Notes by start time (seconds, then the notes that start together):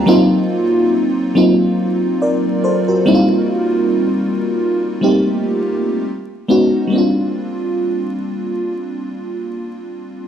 0.06 F#3 A#3 C4 D#4 F4
1.35 F#3 A#3 C4 D#4 F4
2.22 A#4 D5
2.64 A4 C5
2.88 F#4 A#4
3.06 G3 A#3 C4 D#4 E4
3.15 F4
5.01 G3 A3 C4 D#4 G4
5.09 A#3
6.48 G#3 B3 C#4 D#4 F#4
6.87 G3 A#3
6.93 C4 D4
6.98 F4